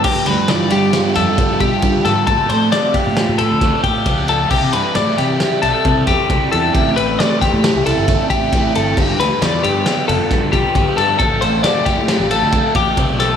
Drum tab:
CC |x---------|----------|x---------|----------|
RD |-xxxxxxxxx|xxxxxxxxxx|-xxxxxxxxx|xxxxxxxxxx|
SD |-oo-oo---o|--o-o-o---|--ooo--o--|--ooo-o-o-|
BD |o-----ooo-|o--o--ooo-|o-----ooo-|o--o--ooo-|

CC |x---------|----------|
RD |-xxxxxxxxx|xxxxxxxxxx|
SD |-oo-o-o---|--ooo----o|
BD |o-----ooo-|o--o--ooo-|